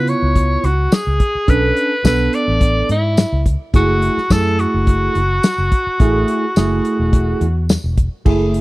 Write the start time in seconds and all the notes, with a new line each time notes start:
Already playing: C#3 B3 E4 F4 B4
0.07 C#5, closed hi-hat
0.22 C#2
0.35 kick, closed hi-hat
0.64 C#2 F#4, closed hi-hat
0.92 G#4, snare, closed hi-hat, tambourine
1.07 C#2
1.20 kick, closed hi-hat
1.35 muted fingered electric bass stroke
1.48 B1 C#4 D4 A4 B4, kick, closed hi-hat
1.77 closed hi-hat
2.04 B1 B3 D4 A4 B4, kick, snare, closed hi-hat, tambourine
2.33 D5, closed hi-hat
2.48 A1
2.61 kick, closed hi-hat
2.89 G#2 E4, closed hi-hat
3.17 snare, closed hi-hat, tambourine
3.33 C#2
3.46 kick, closed hi-hat
3.74 F#1 A3 E4 F#4 G#4, kick, closed hi-hat
4.02 closed hi-hat
4.17 muted fingered electric bass stroke, snare
4.30 F#2 A3 E4 G#4 A4, kick, snare, closed hi-hat, tambourine
4.59 F#4, closed hi-hat
4.74 F#1
4.87 kick, closed hi-hat
5.15 F#1, closed hi-hat
5.43 snare, closed hi-hat, tambourine
5.58 F#1
5.72 kick, closed hi-hat
5.87 muted fingered electric bass stroke
6.00 A1 A3 E4 G#4, kick, closed hi-hat
6.28 closed hi-hat
6.56 F#1 A3 E4 G#4, snare, closed hi-hat, tambourine
6.85 closed hi-hat
6.99 E1
7.13 kick, closed hi-hat
7.41 E2, closed hi-hat
7.69 snare, closed hi-hat, tambourine
7.84 E1
7.97 kick, closed hi-hat
8.25 F#1 A3 E4 G#4, kick, crash
8.54 closed hi-hat